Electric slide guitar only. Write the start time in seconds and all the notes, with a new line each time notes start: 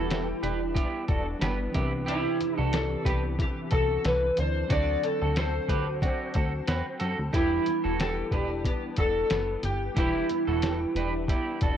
Already playing: E4
2.08 E4
2.59 D4
2.74 A4
3.08 G4
3.42 G4
3.73 A4
4.06 B4
4.40 C5
4.73 D5
5.04 A4
5.38 C5
7.36 E4
8.01 A4
8.34 G4
8.67 G4
9.00 A4
9.65 G4
9.98 E4